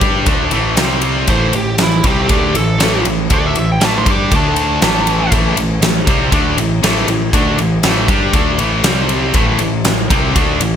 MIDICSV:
0, 0, Header, 1, 5, 480
1, 0, Start_track
1, 0, Key_signature, 0, "minor"
1, 0, Tempo, 504202
1, 1230, Time_signature, 4, 2, 24, 8
1, 10245, End_track
2, 0, Start_track
2, 0, Title_t, "Lead electric guitar"
2, 0, Program_c, 0, 29
2, 1233, Note_on_c, 0, 72, 97
2, 1465, Note_off_c, 0, 72, 0
2, 1481, Note_on_c, 0, 67, 99
2, 1709, Note_off_c, 0, 67, 0
2, 1738, Note_on_c, 0, 64, 95
2, 1958, Note_off_c, 0, 64, 0
2, 1971, Note_on_c, 0, 67, 90
2, 2427, Note_off_c, 0, 67, 0
2, 2437, Note_on_c, 0, 69, 107
2, 2900, Note_off_c, 0, 69, 0
2, 3178, Note_on_c, 0, 74, 111
2, 3297, Note_off_c, 0, 74, 0
2, 3297, Note_on_c, 0, 76, 94
2, 3517, Note_off_c, 0, 76, 0
2, 3541, Note_on_c, 0, 79, 82
2, 3659, Note_off_c, 0, 79, 0
2, 3659, Note_on_c, 0, 81, 96
2, 3762, Note_off_c, 0, 81, 0
2, 3790, Note_on_c, 0, 84, 97
2, 3887, Note_off_c, 0, 84, 0
2, 3916, Note_on_c, 0, 86, 90
2, 4127, Note_off_c, 0, 86, 0
2, 4153, Note_on_c, 0, 81, 107
2, 5062, Note_off_c, 0, 81, 0
2, 10245, End_track
3, 0, Start_track
3, 0, Title_t, "Distorted electric guitar"
3, 0, Program_c, 1, 30
3, 0, Note_on_c, 1, 55, 98
3, 12, Note_on_c, 1, 62, 92
3, 16, Note_on_c, 1, 67, 110
3, 238, Note_on_c, 1, 50, 99
3, 244, Note_off_c, 1, 62, 0
3, 245, Note_off_c, 1, 55, 0
3, 249, Note_on_c, 1, 57, 101
3, 255, Note_off_c, 1, 67, 0
3, 255, Note_on_c, 1, 62, 104
3, 484, Note_off_c, 1, 50, 0
3, 488, Note_on_c, 1, 45, 94
3, 489, Note_off_c, 1, 57, 0
3, 495, Note_off_c, 1, 62, 0
3, 495, Note_on_c, 1, 52, 101
3, 501, Note_on_c, 1, 57, 103
3, 732, Note_off_c, 1, 45, 0
3, 735, Note_off_c, 1, 52, 0
3, 738, Note_off_c, 1, 57, 0
3, 738, Note_on_c, 1, 48, 97
3, 745, Note_on_c, 1, 55, 89
3, 753, Note_on_c, 1, 60, 99
3, 1217, Note_off_c, 1, 48, 0
3, 1221, Note_off_c, 1, 55, 0
3, 1225, Note_off_c, 1, 60, 0
3, 1225, Note_on_c, 1, 45, 97
3, 1228, Note_on_c, 1, 52, 90
3, 1232, Note_on_c, 1, 57, 108
3, 1460, Note_off_c, 1, 45, 0
3, 1462, Note_off_c, 1, 52, 0
3, 1464, Note_off_c, 1, 57, 0
3, 1475, Note_on_c, 1, 45, 65
3, 1479, Note_on_c, 1, 52, 75
3, 1665, Note_off_c, 1, 45, 0
3, 1667, Note_off_c, 1, 52, 0
3, 1721, Note_on_c, 1, 45, 74
3, 1725, Note_on_c, 1, 52, 73
3, 1908, Note_off_c, 1, 45, 0
3, 1910, Note_off_c, 1, 52, 0
3, 1947, Note_on_c, 1, 48, 96
3, 1951, Note_on_c, 1, 55, 100
3, 1956, Note_on_c, 1, 60, 103
3, 2182, Note_off_c, 1, 48, 0
3, 2184, Note_off_c, 1, 55, 0
3, 2187, Note_off_c, 1, 60, 0
3, 2192, Note_on_c, 1, 50, 91
3, 2203, Note_on_c, 1, 57, 88
3, 2209, Note_on_c, 1, 62, 104
3, 2425, Note_off_c, 1, 50, 0
3, 2430, Note_off_c, 1, 57, 0
3, 2433, Note_off_c, 1, 62, 0
3, 2433, Note_on_c, 1, 45, 72
3, 2438, Note_on_c, 1, 52, 81
3, 2624, Note_off_c, 1, 45, 0
3, 2627, Note_off_c, 1, 52, 0
3, 2679, Note_on_c, 1, 45, 91
3, 2682, Note_on_c, 1, 52, 100
3, 2684, Note_on_c, 1, 57, 106
3, 2908, Note_off_c, 1, 45, 0
3, 2910, Note_off_c, 1, 52, 0
3, 2911, Note_off_c, 1, 57, 0
3, 2924, Note_on_c, 1, 45, 70
3, 2929, Note_on_c, 1, 52, 73
3, 3109, Note_off_c, 1, 45, 0
3, 3112, Note_off_c, 1, 52, 0
3, 3155, Note_on_c, 1, 50, 94
3, 3162, Note_on_c, 1, 57, 94
3, 3170, Note_on_c, 1, 62, 98
3, 3386, Note_off_c, 1, 50, 0
3, 3389, Note_off_c, 1, 57, 0
3, 3393, Note_off_c, 1, 62, 0
3, 3402, Note_on_c, 1, 52, 71
3, 3404, Note_on_c, 1, 45, 68
3, 3589, Note_off_c, 1, 45, 0
3, 3589, Note_off_c, 1, 52, 0
3, 3640, Note_on_c, 1, 45, 90
3, 3649, Note_on_c, 1, 52, 98
3, 3654, Note_on_c, 1, 57, 108
3, 3868, Note_off_c, 1, 45, 0
3, 3873, Note_off_c, 1, 52, 0
3, 3875, Note_off_c, 1, 57, 0
3, 3891, Note_on_c, 1, 55, 86
3, 3898, Note_on_c, 1, 62, 85
3, 3898, Note_on_c, 1, 67, 102
3, 4113, Note_off_c, 1, 55, 0
3, 4117, Note_off_c, 1, 62, 0
3, 4117, Note_off_c, 1, 67, 0
3, 4129, Note_on_c, 1, 50, 82
3, 4134, Note_on_c, 1, 57, 92
3, 4144, Note_on_c, 1, 62, 96
3, 4590, Note_off_c, 1, 50, 0
3, 4594, Note_on_c, 1, 45, 84
3, 4595, Note_off_c, 1, 57, 0
3, 4599, Note_off_c, 1, 62, 0
3, 4604, Note_on_c, 1, 52, 92
3, 4609, Note_on_c, 1, 57, 96
3, 5064, Note_off_c, 1, 45, 0
3, 5069, Note_off_c, 1, 52, 0
3, 5071, Note_off_c, 1, 57, 0
3, 5078, Note_on_c, 1, 45, 95
3, 5085, Note_on_c, 1, 52, 98
3, 5086, Note_on_c, 1, 57, 110
3, 5306, Note_off_c, 1, 45, 0
3, 5310, Note_off_c, 1, 52, 0
3, 5310, Note_off_c, 1, 57, 0
3, 5322, Note_on_c, 1, 45, 63
3, 5326, Note_on_c, 1, 52, 76
3, 5507, Note_off_c, 1, 45, 0
3, 5509, Note_off_c, 1, 52, 0
3, 5560, Note_on_c, 1, 45, 62
3, 5565, Note_on_c, 1, 52, 65
3, 5746, Note_off_c, 1, 45, 0
3, 5748, Note_off_c, 1, 52, 0
3, 5789, Note_on_c, 1, 48, 93
3, 5798, Note_on_c, 1, 55, 94
3, 5799, Note_on_c, 1, 60, 108
3, 6012, Note_off_c, 1, 48, 0
3, 6015, Note_on_c, 1, 50, 96
3, 6021, Note_off_c, 1, 55, 0
3, 6025, Note_on_c, 1, 57, 97
3, 6026, Note_off_c, 1, 60, 0
3, 6034, Note_on_c, 1, 62, 101
3, 6254, Note_off_c, 1, 50, 0
3, 6259, Note_off_c, 1, 57, 0
3, 6263, Note_off_c, 1, 62, 0
3, 6264, Note_on_c, 1, 45, 74
3, 6269, Note_on_c, 1, 52, 75
3, 6457, Note_off_c, 1, 45, 0
3, 6460, Note_off_c, 1, 52, 0
3, 6498, Note_on_c, 1, 45, 91
3, 6511, Note_on_c, 1, 52, 104
3, 6514, Note_on_c, 1, 57, 108
3, 6735, Note_off_c, 1, 45, 0
3, 6738, Note_off_c, 1, 52, 0
3, 6743, Note_off_c, 1, 57, 0
3, 6747, Note_on_c, 1, 45, 64
3, 6750, Note_on_c, 1, 52, 78
3, 6938, Note_off_c, 1, 45, 0
3, 6940, Note_off_c, 1, 52, 0
3, 6977, Note_on_c, 1, 50, 97
3, 6987, Note_on_c, 1, 57, 113
3, 6989, Note_on_c, 1, 62, 108
3, 7206, Note_off_c, 1, 50, 0
3, 7209, Note_on_c, 1, 45, 67
3, 7210, Note_off_c, 1, 57, 0
3, 7214, Note_on_c, 1, 52, 80
3, 7220, Note_off_c, 1, 62, 0
3, 7409, Note_off_c, 1, 45, 0
3, 7411, Note_off_c, 1, 52, 0
3, 7462, Note_on_c, 1, 45, 98
3, 7463, Note_on_c, 1, 52, 100
3, 7470, Note_on_c, 1, 57, 116
3, 7696, Note_off_c, 1, 45, 0
3, 7696, Note_off_c, 1, 52, 0
3, 7700, Note_off_c, 1, 57, 0
3, 7700, Note_on_c, 1, 55, 85
3, 7705, Note_on_c, 1, 62, 97
3, 7713, Note_on_c, 1, 67, 96
3, 7928, Note_off_c, 1, 55, 0
3, 7929, Note_off_c, 1, 62, 0
3, 7931, Note_on_c, 1, 50, 94
3, 7932, Note_on_c, 1, 57, 96
3, 7941, Note_off_c, 1, 67, 0
3, 7941, Note_on_c, 1, 62, 97
3, 8169, Note_off_c, 1, 50, 0
3, 8171, Note_off_c, 1, 57, 0
3, 8173, Note_on_c, 1, 45, 93
3, 8175, Note_off_c, 1, 62, 0
3, 8181, Note_on_c, 1, 52, 105
3, 8186, Note_on_c, 1, 57, 110
3, 8404, Note_off_c, 1, 45, 0
3, 8408, Note_on_c, 1, 48, 91
3, 8412, Note_off_c, 1, 52, 0
3, 8416, Note_on_c, 1, 55, 102
3, 8418, Note_off_c, 1, 57, 0
3, 8423, Note_on_c, 1, 60, 108
3, 8888, Note_off_c, 1, 48, 0
3, 8892, Note_off_c, 1, 55, 0
3, 8894, Note_on_c, 1, 45, 97
3, 8896, Note_off_c, 1, 60, 0
3, 8899, Note_on_c, 1, 52, 100
3, 8907, Note_on_c, 1, 57, 115
3, 9127, Note_off_c, 1, 45, 0
3, 9132, Note_off_c, 1, 52, 0
3, 9138, Note_off_c, 1, 57, 0
3, 9138, Note_on_c, 1, 45, 65
3, 9143, Note_on_c, 1, 52, 71
3, 9333, Note_off_c, 1, 45, 0
3, 9335, Note_off_c, 1, 52, 0
3, 9375, Note_on_c, 1, 45, 71
3, 9378, Note_on_c, 1, 52, 79
3, 9571, Note_off_c, 1, 45, 0
3, 9573, Note_off_c, 1, 52, 0
3, 9617, Note_on_c, 1, 48, 93
3, 9627, Note_on_c, 1, 55, 90
3, 9627, Note_on_c, 1, 60, 102
3, 9844, Note_off_c, 1, 48, 0
3, 9848, Note_on_c, 1, 50, 99
3, 9856, Note_off_c, 1, 55, 0
3, 9858, Note_off_c, 1, 60, 0
3, 9860, Note_on_c, 1, 57, 97
3, 9864, Note_on_c, 1, 62, 113
3, 10089, Note_off_c, 1, 50, 0
3, 10089, Note_off_c, 1, 57, 0
3, 10093, Note_on_c, 1, 52, 73
3, 10095, Note_on_c, 1, 45, 67
3, 10097, Note_off_c, 1, 62, 0
3, 10245, Note_off_c, 1, 45, 0
3, 10245, Note_off_c, 1, 52, 0
3, 10245, End_track
4, 0, Start_track
4, 0, Title_t, "Picked electric bass"
4, 0, Program_c, 2, 34
4, 10, Note_on_c, 2, 43, 100
4, 242, Note_off_c, 2, 43, 0
4, 250, Note_on_c, 2, 38, 90
4, 482, Note_off_c, 2, 38, 0
4, 501, Note_on_c, 2, 33, 100
4, 728, Note_off_c, 2, 33, 0
4, 742, Note_on_c, 2, 36, 88
4, 1192, Note_off_c, 2, 36, 0
4, 1221, Note_on_c, 2, 33, 95
4, 1449, Note_off_c, 2, 33, 0
4, 1471, Note_on_c, 2, 33, 81
4, 1694, Note_off_c, 2, 33, 0
4, 1715, Note_on_c, 2, 33, 81
4, 1936, Note_off_c, 2, 33, 0
4, 1942, Note_on_c, 2, 36, 97
4, 2170, Note_off_c, 2, 36, 0
4, 2188, Note_on_c, 2, 38, 93
4, 2413, Note_off_c, 2, 38, 0
4, 2433, Note_on_c, 2, 33, 85
4, 2655, Note_off_c, 2, 33, 0
4, 2676, Note_on_c, 2, 33, 95
4, 2897, Note_off_c, 2, 33, 0
4, 2915, Note_on_c, 2, 33, 82
4, 3136, Note_off_c, 2, 33, 0
4, 3147, Note_on_c, 2, 38, 98
4, 3372, Note_off_c, 2, 38, 0
4, 3404, Note_on_c, 2, 33, 79
4, 3621, Note_off_c, 2, 33, 0
4, 3637, Note_on_c, 2, 33, 96
4, 3857, Note_off_c, 2, 33, 0
4, 3868, Note_on_c, 2, 43, 94
4, 4092, Note_off_c, 2, 43, 0
4, 4109, Note_on_c, 2, 38, 87
4, 4555, Note_off_c, 2, 38, 0
4, 4590, Note_on_c, 2, 33, 93
4, 5036, Note_off_c, 2, 33, 0
4, 5063, Note_on_c, 2, 33, 100
4, 5289, Note_off_c, 2, 33, 0
4, 5301, Note_on_c, 2, 33, 82
4, 5528, Note_off_c, 2, 33, 0
4, 5536, Note_on_c, 2, 33, 78
4, 5765, Note_off_c, 2, 33, 0
4, 5779, Note_on_c, 2, 36, 103
4, 6006, Note_off_c, 2, 36, 0
4, 6018, Note_on_c, 2, 38, 93
4, 6245, Note_off_c, 2, 38, 0
4, 6255, Note_on_c, 2, 33, 85
4, 6483, Note_off_c, 2, 33, 0
4, 6499, Note_on_c, 2, 33, 99
4, 6725, Note_off_c, 2, 33, 0
4, 6732, Note_on_c, 2, 33, 80
4, 6961, Note_off_c, 2, 33, 0
4, 6976, Note_on_c, 2, 38, 107
4, 7203, Note_off_c, 2, 38, 0
4, 7221, Note_on_c, 2, 33, 76
4, 7446, Note_off_c, 2, 33, 0
4, 7460, Note_on_c, 2, 33, 94
4, 7685, Note_off_c, 2, 33, 0
4, 7697, Note_on_c, 2, 43, 101
4, 7923, Note_off_c, 2, 43, 0
4, 7938, Note_on_c, 2, 38, 94
4, 8164, Note_off_c, 2, 38, 0
4, 8169, Note_on_c, 2, 33, 94
4, 8399, Note_off_c, 2, 33, 0
4, 8408, Note_on_c, 2, 36, 95
4, 8861, Note_off_c, 2, 36, 0
4, 8891, Note_on_c, 2, 33, 105
4, 9120, Note_off_c, 2, 33, 0
4, 9139, Note_on_c, 2, 33, 76
4, 9364, Note_off_c, 2, 33, 0
4, 9373, Note_on_c, 2, 33, 85
4, 9601, Note_off_c, 2, 33, 0
4, 9618, Note_on_c, 2, 36, 103
4, 9844, Note_off_c, 2, 36, 0
4, 9858, Note_on_c, 2, 38, 89
4, 10084, Note_off_c, 2, 38, 0
4, 10095, Note_on_c, 2, 33, 86
4, 10245, Note_off_c, 2, 33, 0
4, 10245, End_track
5, 0, Start_track
5, 0, Title_t, "Drums"
5, 12, Note_on_c, 9, 51, 69
5, 14, Note_on_c, 9, 36, 107
5, 107, Note_off_c, 9, 51, 0
5, 109, Note_off_c, 9, 36, 0
5, 250, Note_on_c, 9, 51, 100
5, 253, Note_on_c, 9, 36, 115
5, 345, Note_off_c, 9, 51, 0
5, 349, Note_off_c, 9, 36, 0
5, 486, Note_on_c, 9, 51, 71
5, 581, Note_off_c, 9, 51, 0
5, 731, Note_on_c, 9, 51, 108
5, 737, Note_on_c, 9, 38, 119
5, 827, Note_off_c, 9, 51, 0
5, 832, Note_off_c, 9, 38, 0
5, 967, Note_on_c, 9, 51, 73
5, 1062, Note_off_c, 9, 51, 0
5, 1213, Note_on_c, 9, 51, 101
5, 1218, Note_on_c, 9, 36, 103
5, 1308, Note_off_c, 9, 51, 0
5, 1313, Note_off_c, 9, 36, 0
5, 1457, Note_on_c, 9, 51, 74
5, 1552, Note_off_c, 9, 51, 0
5, 1696, Note_on_c, 9, 51, 102
5, 1701, Note_on_c, 9, 38, 109
5, 1791, Note_off_c, 9, 51, 0
5, 1796, Note_off_c, 9, 38, 0
5, 1939, Note_on_c, 9, 51, 77
5, 1943, Note_on_c, 9, 36, 103
5, 2034, Note_off_c, 9, 51, 0
5, 2038, Note_off_c, 9, 36, 0
5, 2181, Note_on_c, 9, 51, 104
5, 2185, Note_on_c, 9, 36, 116
5, 2276, Note_off_c, 9, 51, 0
5, 2280, Note_off_c, 9, 36, 0
5, 2428, Note_on_c, 9, 51, 79
5, 2523, Note_off_c, 9, 51, 0
5, 2666, Note_on_c, 9, 51, 114
5, 2672, Note_on_c, 9, 38, 124
5, 2761, Note_off_c, 9, 51, 0
5, 2767, Note_off_c, 9, 38, 0
5, 2906, Note_on_c, 9, 51, 74
5, 3001, Note_off_c, 9, 51, 0
5, 3141, Note_on_c, 9, 51, 98
5, 3148, Note_on_c, 9, 36, 105
5, 3237, Note_off_c, 9, 51, 0
5, 3243, Note_off_c, 9, 36, 0
5, 3384, Note_on_c, 9, 51, 71
5, 3479, Note_off_c, 9, 51, 0
5, 3627, Note_on_c, 9, 51, 90
5, 3633, Note_on_c, 9, 38, 109
5, 3722, Note_off_c, 9, 51, 0
5, 3728, Note_off_c, 9, 38, 0
5, 3868, Note_on_c, 9, 36, 104
5, 3869, Note_on_c, 9, 51, 73
5, 3963, Note_off_c, 9, 36, 0
5, 3964, Note_off_c, 9, 51, 0
5, 4108, Note_on_c, 9, 51, 97
5, 4109, Note_on_c, 9, 36, 109
5, 4203, Note_off_c, 9, 51, 0
5, 4205, Note_off_c, 9, 36, 0
5, 4344, Note_on_c, 9, 51, 70
5, 4439, Note_off_c, 9, 51, 0
5, 4587, Note_on_c, 9, 51, 100
5, 4592, Note_on_c, 9, 38, 117
5, 4682, Note_off_c, 9, 51, 0
5, 4687, Note_off_c, 9, 38, 0
5, 4825, Note_on_c, 9, 51, 74
5, 4920, Note_off_c, 9, 51, 0
5, 5063, Note_on_c, 9, 51, 111
5, 5064, Note_on_c, 9, 36, 109
5, 5158, Note_off_c, 9, 51, 0
5, 5160, Note_off_c, 9, 36, 0
5, 5304, Note_on_c, 9, 51, 82
5, 5399, Note_off_c, 9, 51, 0
5, 5543, Note_on_c, 9, 51, 110
5, 5549, Note_on_c, 9, 38, 114
5, 5638, Note_off_c, 9, 51, 0
5, 5644, Note_off_c, 9, 38, 0
5, 5780, Note_on_c, 9, 51, 81
5, 5781, Note_on_c, 9, 36, 109
5, 5876, Note_off_c, 9, 36, 0
5, 5876, Note_off_c, 9, 51, 0
5, 6018, Note_on_c, 9, 51, 108
5, 6020, Note_on_c, 9, 36, 113
5, 6114, Note_off_c, 9, 51, 0
5, 6115, Note_off_c, 9, 36, 0
5, 6264, Note_on_c, 9, 51, 81
5, 6359, Note_off_c, 9, 51, 0
5, 6507, Note_on_c, 9, 51, 115
5, 6512, Note_on_c, 9, 38, 123
5, 6602, Note_off_c, 9, 51, 0
5, 6607, Note_off_c, 9, 38, 0
5, 6740, Note_on_c, 9, 51, 78
5, 6835, Note_off_c, 9, 51, 0
5, 6980, Note_on_c, 9, 36, 105
5, 6985, Note_on_c, 9, 51, 98
5, 7075, Note_off_c, 9, 36, 0
5, 7081, Note_off_c, 9, 51, 0
5, 7220, Note_on_c, 9, 51, 74
5, 7316, Note_off_c, 9, 51, 0
5, 7455, Note_on_c, 9, 51, 95
5, 7461, Note_on_c, 9, 38, 116
5, 7551, Note_off_c, 9, 51, 0
5, 7556, Note_off_c, 9, 38, 0
5, 7696, Note_on_c, 9, 36, 114
5, 7699, Note_on_c, 9, 51, 71
5, 7791, Note_off_c, 9, 36, 0
5, 7794, Note_off_c, 9, 51, 0
5, 7934, Note_on_c, 9, 51, 96
5, 7935, Note_on_c, 9, 36, 117
5, 8030, Note_off_c, 9, 36, 0
5, 8030, Note_off_c, 9, 51, 0
5, 8174, Note_on_c, 9, 51, 75
5, 8270, Note_off_c, 9, 51, 0
5, 8413, Note_on_c, 9, 51, 105
5, 8419, Note_on_c, 9, 38, 123
5, 8508, Note_off_c, 9, 51, 0
5, 8514, Note_off_c, 9, 38, 0
5, 8654, Note_on_c, 9, 51, 73
5, 8749, Note_off_c, 9, 51, 0
5, 8889, Note_on_c, 9, 51, 106
5, 8896, Note_on_c, 9, 36, 115
5, 8984, Note_off_c, 9, 51, 0
5, 8991, Note_off_c, 9, 36, 0
5, 9126, Note_on_c, 9, 51, 79
5, 9222, Note_off_c, 9, 51, 0
5, 9373, Note_on_c, 9, 51, 109
5, 9379, Note_on_c, 9, 38, 112
5, 9468, Note_off_c, 9, 51, 0
5, 9474, Note_off_c, 9, 38, 0
5, 9619, Note_on_c, 9, 36, 103
5, 9621, Note_on_c, 9, 51, 80
5, 9714, Note_off_c, 9, 36, 0
5, 9716, Note_off_c, 9, 51, 0
5, 9860, Note_on_c, 9, 36, 117
5, 9860, Note_on_c, 9, 51, 108
5, 9955, Note_off_c, 9, 51, 0
5, 9956, Note_off_c, 9, 36, 0
5, 10097, Note_on_c, 9, 51, 81
5, 10192, Note_off_c, 9, 51, 0
5, 10245, End_track
0, 0, End_of_file